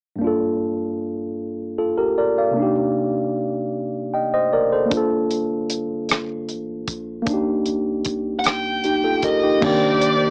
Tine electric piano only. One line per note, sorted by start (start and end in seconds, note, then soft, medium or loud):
0.16 2.50 G2 medium
0.16 2.51 A#3 soft
0.21 2.52 D4 soft
0.21 1.76 F4 medium
0.27 1.77 A4 medium
1.78 1.97 F4 soft
1.78 1.97 A4 soft
1.98 2.16 G4 soft
1.98 2.16 A#4 medium
2.18 2.36 A#4 soft
2.18 2.36 D5 medium
2.38 2.75 D5 soft
2.38 2.75 F5 soft
2.51 4.85 C3 medium
2.51 4.85 A#3 soft
2.57 4.88 D4 soft
2.57 4.89 D#4 medium
2.62 4.91 G4 medium
4.14 4.32 D#5 soft
4.14 4.32 G5 soft
4.34 4.52 C5 soft
4.34 4.52 D#5 medium
4.53 4.71 A#4 soft
4.53 4.71 D5 medium
4.73 4.96 A4 soft
4.73 5.09 C5 medium
4.86 7.20 A#3 medium
4.86 7.22 D4 medium
4.93 7.24 F4 medium
4.93 7.26 A4 medium
7.22 9.56 A#3 medium
7.22 8.80 D4 medium
7.30 8.82 D#4 medium
7.30 8.83 G4 medium
8.85 9.03 D#4 soft
8.85 9.03 G4 soft
9.04 9.23 F4 soft
9.04 9.22 A4 medium
9.24 9.42 G4 soft
9.24 9.42 A#4 medium
9.43 9.80 D#4 soft
9.43 9.65 G4 soft
9.61 10.30 D#3 medium
9.61 10.30 A#3 medium
9.61 10.30 D4 medium
9.66 10.30 G4 medium